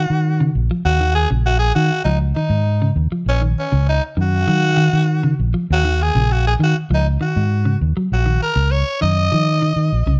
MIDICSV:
0, 0, Header, 1, 6, 480
1, 0, Start_track
1, 0, Key_signature, -6, "minor"
1, 0, Tempo, 604230
1, 682, Time_signature, 4, 2, 24, 8
1, 8102, End_track
2, 0, Start_track
2, 0, Title_t, "Tenor saxophone"
2, 0, Program_c, 0, 66
2, 0, Note_on_c, 0, 66, 108
2, 419, Note_off_c, 0, 66, 0
2, 682, Note_on_c, 0, 66, 109
2, 905, Note_off_c, 0, 66, 0
2, 915, Note_on_c, 0, 68, 110
2, 1024, Note_off_c, 0, 68, 0
2, 1163, Note_on_c, 0, 66, 108
2, 1260, Note_off_c, 0, 66, 0
2, 1265, Note_on_c, 0, 68, 104
2, 1383, Note_off_c, 0, 68, 0
2, 1392, Note_on_c, 0, 66, 99
2, 1619, Note_off_c, 0, 66, 0
2, 1624, Note_on_c, 0, 63, 92
2, 1735, Note_off_c, 0, 63, 0
2, 1872, Note_on_c, 0, 63, 83
2, 2324, Note_off_c, 0, 63, 0
2, 2611, Note_on_c, 0, 61, 94
2, 2717, Note_off_c, 0, 61, 0
2, 2854, Note_on_c, 0, 61, 86
2, 3071, Note_off_c, 0, 61, 0
2, 3093, Note_on_c, 0, 63, 103
2, 3198, Note_off_c, 0, 63, 0
2, 3350, Note_on_c, 0, 66, 123
2, 4262, Note_off_c, 0, 66, 0
2, 4553, Note_on_c, 0, 66, 125
2, 4785, Note_on_c, 0, 68, 108
2, 4797, Note_off_c, 0, 66, 0
2, 5019, Note_on_c, 0, 66, 102
2, 5031, Note_off_c, 0, 68, 0
2, 5129, Note_off_c, 0, 66, 0
2, 5143, Note_on_c, 0, 68, 101
2, 5191, Note_off_c, 0, 68, 0
2, 5273, Note_on_c, 0, 66, 99
2, 5373, Note_off_c, 0, 66, 0
2, 5516, Note_on_c, 0, 63, 87
2, 5615, Note_off_c, 0, 63, 0
2, 5738, Note_on_c, 0, 66, 86
2, 6176, Note_off_c, 0, 66, 0
2, 6464, Note_on_c, 0, 66, 90
2, 6675, Note_off_c, 0, 66, 0
2, 6692, Note_on_c, 0, 70, 101
2, 6922, Note_on_c, 0, 73, 105
2, 6934, Note_off_c, 0, 70, 0
2, 7160, Note_off_c, 0, 73, 0
2, 7167, Note_on_c, 0, 75, 116
2, 8092, Note_off_c, 0, 75, 0
2, 8102, End_track
3, 0, Start_track
3, 0, Title_t, "Clean electric guitar"
3, 0, Program_c, 1, 27
3, 321, Note_on_c, 1, 49, 81
3, 508, Note_off_c, 1, 49, 0
3, 563, Note_on_c, 1, 53, 89
3, 656, Note_off_c, 1, 53, 0
3, 798, Note_on_c, 1, 51, 69
3, 986, Note_off_c, 1, 51, 0
3, 1036, Note_on_c, 1, 49, 63
3, 1225, Note_off_c, 1, 49, 0
3, 1397, Note_on_c, 1, 51, 73
3, 1586, Note_off_c, 1, 51, 0
3, 1637, Note_on_c, 1, 53, 91
3, 1825, Note_off_c, 1, 53, 0
3, 1878, Note_on_c, 1, 51, 90
3, 2066, Note_off_c, 1, 51, 0
3, 2238, Note_on_c, 1, 49, 81
3, 2426, Note_off_c, 1, 49, 0
3, 2479, Note_on_c, 1, 53, 80
3, 2572, Note_off_c, 1, 53, 0
3, 2714, Note_on_c, 1, 51, 63
3, 2903, Note_off_c, 1, 51, 0
3, 2955, Note_on_c, 1, 49, 75
3, 3144, Note_off_c, 1, 49, 0
3, 3312, Note_on_c, 1, 51, 70
3, 3501, Note_off_c, 1, 51, 0
3, 3556, Note_on_c, 1, 54, 92
3, 3744, Note_off_c, 1, 54, 0
3, 3788, Note_on_c, 1, 51, 96
3, 3979, Note_off_c, 1, 51, 0
3, 4157, Note_on_c, 1, 49, 84
3, 4345, Note_off_c, 1, 49, 0
3, 4401, Note_on_c, 1, 53, 94
3, 4493, Note_off_c, 1, 53, 0
3, 4644, Note_on_c, 1, 51, 68
3, 4829, Note_off_c, 1, 51, 0
3, 4890, Note_on_c, 1, 49, 70
3, 5072, Note_off_c, 1, 49, 0
3, 5245, Note_on_c, 1, 51, 69
3, 5429, Note_off_c, 1, 51, 0
3, 5487, Note_on_c, 1, 53, 90
3, 5670, Note_off_c, 1, 53, 0
3, 5725, Note_on_c, 1, 51, 84
3, 5909, Note_off_c, 1, 51, 0
3, 6080, Note_on_c, 1, 49, 80
3, 6266, Note_off_c, 1, 49, 0
3, 6329, Note_on_c, 1, 54, 85
3, 6418, Note_off_c, 1, 54, 0
3, 6560, Note_on_c, 1, 51, 63
3, 6746, Note_off_c, 1, 51, 0
3, 7158, Note_on_c, 1, 51, 83
3, 7345, Note_off_c, 1, 51, 0
3, 7402, Note_on_c, 1, 53, 91
3, 7588, Note_off_c, 1, 53, 0
3, 7642, Note_on_c, 1, 51, 84
3, 7828, Note_off_c, 1, 51, 0
3, 8001, Note_on_c, 1, 49, 83
3, 8102, Note_off_c, 1, 49, 0
3, 8102, End_track
4, 0, Start_track
4, 0, Title_t, "Fingered electric bass"
4, 0, Program_c, 2, 33
4, 80, Note_on_c, 2, 51, 91
4, 394, Note_off_c, 2, 51, 0
4, 438, Note_on_c, 2, 34, 102
4, 545, Note_off_c, 2, 34, 0
4, 676, Note_on_c, 2, 39, 105
4, 993, Note_off_c, 2, 39, 0
4, 1037, Note_on_c, 2, 34, 100
4, 1352, Note_off_c, 2, 34, 0
4, 1396, Note_on_c, 2, 51, 97
4, 1503, Note_off_c, 2, 51, 0
4, 1629, Note_on_c, 2, 37, 105
4, 1843, Note_off_c, 2, 37, 0
4, 1983, Note_on_c, 2, 44, 114
4, 2304, Note_off_c, 2, 44, 0
4, 2350, Note_on_c, 2, 39, 106
4, 2460, Note_off_c, 2, 39, 0
4, 2590, Note_on_c, 2, 34, 102
4, 2803, Note_off_c, 2, 34, 0
4, 2959, Note_on_c, 2, 37, 97
4, 3169, Note_off_c, 2, 37, 0
4, 3313, Note_on_c, 2, 42, 97
4, 3525, Note_off_c, 2, 42, 0
4, 3555, Note_on_c, 2, 51, 114
4, 3871, Note_off_c, 2, 51, 0
4, 3917, Note_on_c, 2, 51, 94
4, 4231, Note_off_c, 2, 51, 0
4, 4285, Note_on_c, 2, 34, 97
4, 4387, Note_off_c, 2, 34, 0
4, 4531, Note_on_c, 2, 39, 114
4, 4840, Note_off_c, 2, 39, 0
4, 4884, Note_on_c, 2, 34, 114
4, 5195, Note_off_c, 2, 34, 0
4, 5239, Note_on_c, 2, 51, 93
4, 5343, Note_off_c, 2, 51, 0
4, 5483, Note_on_c, 2, 37, 112
4, 5690, Note_off_c, 2, 37, 0
4, 5850, Note_on_c, 2, 44, 107
4, 6158, Note_off_c, 2, 44, 0
4, 6206, Note_on_c, 2, 39, 99
4, 6308, Note_off_c, 2, 39, 0
4, 6449, Note_on_c, 2, 34, 96
4, 6653, Note_off_c, 2, 34, 0
4, 6798, Note_on_c, 2, 37, 89
4, 7007, Note_off_c, 2, 37, 0
4, 7170, Note_on_c, 2, 42, 90
4, 7374, Note_off_c, 2, 42, 0
4, 7411, Note_on_c, 2, 51, 104
4, 7720, Note_off_c, 2, 51, 0
4, 7756, Note_on_c, 2, 51, 86
4, 7861, Note_off_c, 2, 51, 0
4, 7883, Note_on_c, 2, 34, 85
4, 7990, Note_off_c, 2, 34, 0
4, 7994, Note_on_c, 2, 36, 81
4, 8102, Note_off_c, 2, 36, 0
4, 8102, End_track
5, 0, Start_track
5, 0, Title_t, "Muted clean electric guitar strokes"
5, 6800, Note_on_c, 9, 29, 69
5, 6880, Note_off_c, 9, 29, 0
5, 8102, End_track
6, 0, Start_track
6, 0, Title_t, "Muted fingered electric bass strokes"
6, 6331, Note_on_c, 9, 29, 37
6, 6410, Note_off_c, 9, 29, 0
6, 8102, End_track
0, 0, End_of_file